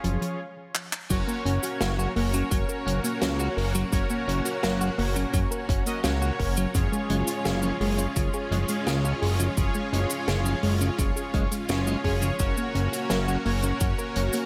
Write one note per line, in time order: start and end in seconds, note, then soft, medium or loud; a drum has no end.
0.00 0.17 F3 loud
0.00 0.40 C#4 medium
0.00 0.40 F4 medium
0.00 0.40 G#4 medium
0.00 0.40 C#5 medium
0.04 0.18 F#1 medium
0.04 closed hi-hat medium
0.22 0.34 F3 loud
0.22 closed hi-hat medium
0.75 clap medium
0.93 clap loud
1.10 1.24 F#1 loud
1.10 1.23 F#3 medium
1.10 1.16 F#3 medium
1.10 6.71 A#3 medium
1.10 14.46 C#4 medium
1.10 2.12 C#4 medium
1.10 2.12 F#4 medium
1.10 6.71 F#4 medium
1.10 2.12 A#4 medium
1.10 2.12 C#5 loud
1.10 kick loud
1.10 closed hi-hat loud
1.10 crash loud
1.10 cabasa medium
1.28 1.35 A#3 loud
1.28 cabasa medium
1.45 1.59 F#1 medium
1.45 1.58 C#4 medium
1.45 1.51 C#4 medium
1.45 closed hi-hat medium
1.63 1.71 F#4 medium
1.63 closed hi-hat medium
1.63 cabasa medium
1.80 2.08 F#1 loud
1.80 1.86 F#3 medium
1.80 1.93 A#4 loud
1.80 snare loud
1.80 closed hi-hat medium
1.80 cabasa medium
1.98 2.11 F#3 medium
1.98 2.07 F#4 medium
1.98 cabasa medium
2.16 2.43 F#1 loud
2.16 2.29 A#3 loud
2.16 3.88 C#4 medium
2.16 3.88 F#4 medium
2.16 3.88 A#4 medium
2.16 3.88 C#5 medium
2.16 open hi-hat medium
2.34 2.43 F#3 medium
2.34 2.46 C#4 medium
2.34 closed hi-hat medium
2.34 cabasa medium
2.51 2.65 F#1 medium
2.51 2.57 F#3 medium
2.51 2.68 F#4 medium
2.51 kick loud
2.51 closed hi-hat medium
2.51 cabasa medium
2.69 2.76 A#4 loud
2.69 cabasa soft
2.86 3.00 F#1 medium
2.86 2.99 F#3 medium
2.86 2.92 C#4 medium
2.86 closed hi-hat loud
3.04 3.12 A#3 medium
3.04 closed hi-hat medium
3.04 cabasa medium
3.22 3.49 C#2 loud
3.22 3.27 F#3 medium
3.22 3.34 C#4 loud
3.22 snare loud
3.22 closed hi-hat loud
3.22 cabasa medium
3.40 3.52 F#4 medium
3.40 3.49 F#4 medium
3.40 cabasa soft
3.57 3.84 F#1 medium
3.57 3.65 A#4 loud
3.57 open hi-hat medium
3.75 3.87 F#3 medium
3.75 3.84 F#3 medium
3.75 closed hi-hat medium
3.75 cabasa medium
3.92 4.06 F#1 loud
3.92 4.05 F#3 medium
3.92 3.98 F#3 medium
3.92 4.94 C#4 medium
3.92 4.94 F#4 medium
3.92 4.94 A#4 medium
3.92 4.94 C#5 loud
3.92 kick loud
3.92 closed hi-hat loud
3.92 cabasa medium
4.10 4.18 A#3 loud
4.10 cabasa soft
4.28 4.41 F#1 medium
4.28 4.33 C#4 medium
4.28 4.40 C#4 medium
4.28 closed hi-hat medium
4.45 4.53 F#4 medium
4.45 closed hi-hat medium
4.45 cabasa medium
4.63 4.90 F#1 loud
4.63 4.68 F#3 medium
4.63 4.76 A#4 loud
4.63 snare loud
4.63 closed hi-hat medium
4.63 cabasa medium
4.81 4.93 F#3 medium
4.81 4.90 F#4 medium
4.81 cabasa medium
4.98 5.25 F#1 loud
4.98 5.11 A#3 loud
4.98 5.83 C#4 medium
4.98 5.83 F#4 medium
4.98 5.83 A#4 medium
4.98 5.83 C#5 medium
4.98 open hi-hat medium
5.16 5.25 F#3 medium
5.16 5.29 C#4 medium
5.16 closed hi-hat medium
5.16 cabasa medium
5.33 5.47 F#1 medium
5.33 5.39 F#3 medium
5.33 5.50 F#4 medium
5.33 kick loud
5.33 closed hi-hat medium
5.33 cabasa medium
5.51 5.59 A#4 loud
5.51 cabasa medium
5.69 5.83 F#1 medium
5.69 5.81 F#3 medium
5.69 5.74 C#4 medium
5.69 kick loud
5.69 closed hi-hat loud
5.86 5.94 A#3 medium
5.86 6.00 C#4 loud
5.86 6.00 F#4 medium
5.86 6.00 A#4 medium
5.86 6.00 D#5 loud
5.86 closed hi-hat medium
5.86 cabasa medium
6.04 6.31 C#2 loud
6.04 6.10 F#3 medium
6.04 6.17 C#4 loud
6.04 6.71 C#4 medium
6.04 6.71 F#4 medium
6.04 6.71 A#4 medium
6.04 6.71 C#5 loud
6.04 snare loud
6.04 closed hi-hat medium
6.04 cabasa medium
6.22 6.34 F#4 medium
6.22 6.31 F#4 medium
6.22 cabasa soft
6.39 6.67 F#1 medium
6.39 6.47 A#4 loud
6.39 kick medium
6.39 open hi-hat medium
6.57 6.70 F#3 medium
6.57 6.66 F#3 medium
6.57 closed hi-hat medium
6.57 cabasa medium
6.75 6.88 F#1 loud
6.75 6.80 C#3 medium
6.75 6.87 F3 medium
6.75 12.36 G#3 medium
6.75 7.77 C#4 medium
6.75 12.36 F4 medium
6.75 7.77 F4 medium
6.75 7.77 G#4 medium
6.75 7.77 C#5 medium
6.75 kick loud
6.75 closed hi-hat medium
6.75 cabasa medium
6.92 7.00 G#3 loud
6.92 cabasa soft
7.10 7.24 F#1 medium
7.10 7.16 G#3 medium
7.10 7.23 C#4 medium
7.10 closed hi-hat medium
7.27 7.35 F4 medium
7.27 closed hi-hat medium
7.27 cabasa medium
7.45 7.72 F#1 loud
7.45 7.51 C#3 medium
7.45 7.58 G#4 loud
7.45 snare loud
7.45 closed hi-hat medium
7.45 cabasa medium
7.63 7.76 F3 medium
7.63 7.72 C#4 medium
7.63 cabasa soft
7.81 8.08 F#1 loud
7.81 7.93 G#3 loud
7.81 9.53 C#4 medium
7.81 9.53 F4 medium
7.81 9.53 G#4 medium
7.81 9.53 C#5 medium
7.81 open hi-hat medium
7.98 8.07 C#3 medium
7.98 8.11 C#4 medium
7.98 closed hi-hat medium
7.98 cabasa medium
8.16 8.30 F#1 medium
8.16 8.22 C#3 medium
8.16 8.33 F4 medium
8.16 kick loud
8.16 closed hi-hat loud
8.16 cabasa medium
8.34 8.41 G#4 loud
8.34 cabasa soft
8.51 8.65 F#1 medium
8.51 8.64 F3 medium
8.51 8.57 G#3 medium
8.51 closed hi-hat medium
8.69 8.77 G#3 medium
8.69 closed hi-hat medium
8.69 cabasa medium
8.87 9.14 C#2 loud
8.87 8.92 C#3 medium
8.87 8.99 C#4 loud
8.87 snare loud
8.87 closed hi-hat medium
8.87 cabasa medium
9.04 9.13 C#4 medium
9.04 9.17 F4 medium
9.04 cabasa soft
9.22 9.49 F#1 medium
9.22 9.29 G#4 loud
9.22 open hi-hat medium
9.39 9.49 C#3 medium
9.39 9.52 F3 medium
9.39 closed hi-hat medium
9.39 cabasa medium
9.57 9.71 F#1 loud
9.57 9.63 C#3 medium
9.57 9.70 F3 medium
9.57 10.59 C#4 loud
9.57 10.59 F4 medium
9.57 10.59 G#4 medium
9.57 10.59 C#5 loud
9.57 kick loud
9.57 closed hi-hat medium
9.57 cabasa medium
9.74 9.82 G#3 loud
9.74 cabasa soft
9.93 10.06 F#1 medium
9.93 9.98 G#3 medium
9.93 10.05 C#4 medium
9.93 closed hi-hat medium
10.10 10.18 F4 medium
10.10 closed hi-hat medium
10.10 cabasa medium
10.28 10.55 F#1 loud
10.28 10.33 C#3 medium
10.28 10.40 G#4 loud
10.28 snare loud
10.28 closed hi-hat medium
10.28 cabasa medium
10.45 10.58 F3 medium
10.45 10.55 C#4 medium
10.45 cabasa medium
10.63 10.90 F#1 loud
10.63 10.75 G#3 loud
10.63 11.48 C#4 medium
10.63 11.48 F4 medium
10.63 11.48 G#4 medium
10.63 11.48 C#5 medium
10.63 open hi-hat medium
10.81 10.90 C#3 medium
10.81 10.93 C#4 medium
10.81 closed hi-hat medium
10.81 cabasa medium
10.98 11.12 F#1 medium
10.98 11.04 C#3 medium
10.98 11.15 F4 medium
10.98 kick loud
10.98 closed hi-hat medium
10.98 cabasa medium
11.16 11.24 G#4 loud
11.16 cabasa soft
11.34 11.47 F#1 medium
11.34 11.46 F3 medium
11.34 11.43 G#3 medium
11.34 kick loud
11.34 closed hi-hat medium
11.51 11.59 G#3 medium
11.51 closed hi-hat medium
11.51 cabasa medium
11.69 11.96 F#1 loud
11.69 11.83 C#3 medium
11.69 11.82 C#4 loud
11.69 12.00 C#4 medium
11.69 12.00 F4 medium
11.69 12.00 G#4 medium
11.69 12.00 C#5 loud
11.69 snare loud
11.69 closed hi-hat medium
11.69 cabasa medium
11.87 11.96 G#3 medium
11.87 11.99 F4 medium
11.87 cabasa soft
12.04 12.31 F#1 medium
12.04 12.36 C#4 medium
12.04 12.13 C#4 loud
12.04 12.36 F4 medium
12.04 12.12 G#4 loud
12.04 12.35 G#4 medium
12.04 12.36 C#5 loud
12.04 kick medium
12.04 open hi-hat medium
12.22 12.31 C#3 loud
12.22 12.34 F3 medium
12.22 closed hi-hat medium
12.22 cabasa medium
12.39 12.53 F#1 loud
12.39 12.52 F#3 medium
12.39 12.45 F#3 medium
12.39 14.46 A#3 medium
12.39 13.41 C#4 medium
12.39 13.41 F#4 medium
12.39 14.46 F#4 medium
12.39 13.41 A#4 medium
12.39 13.41 C#5 loud
12.39 kick loud
12.39 closed hi-hat medium
12.39 cabasa medium
12.57 12.65 A#3 loud
12.57 cabasa medium
12.75 12.89 F#1 medium
12.75 12.87 C#4 medium
12.75 12.80 C#4 medium
12.75 closed hi-hat medium
12.93 13.00 F#4 medium
12.93 closed hi-hat medium
12.93 cabasa medium
13.10 13.37 F#1 loud
13.10 13.16 F#3 medium
13.10 13.23 A#4 loud
13.10 snare loud
13.10 closed hi-hat medium
13.10 cabasa medium
13.28 13.40 F#3 medium
13.28 13.37 F#4 medium
13.28 cabasa soft
13.45 13.73 F#1 loud
13.45 13.58 A#3 loud
13.45 14.46 C#4 medium
13.45 14.46 F#4 medium
13.45 14.46 A#4 medium
13.45 14.46 C#5 medium
13.45 open hi-hat medium
13.63 13.72 F#3 medium
13.63 13.76 C#4 medium
13.63 closed hi-hat medium
13.63 cabasa medium
13.81 13.94 F#1 medium
13.81 13.86 F#3 medium
13.81 13.98 F#4 medium
13.81 kick loud
13.81 closed hi-hat medium
13.81 cabasa medium
13.98 14.06 A#4 loud
13.98 cabasa soft
14.16 14.30 F#1 medium
14.16 14.29 F#3 medium
14.16 14.22 C#4 medium
14.16 closed hi-hat medium
14.33 14.41 A#3 medium
14.33 closed hi-hat medium
14.33 cabasa medium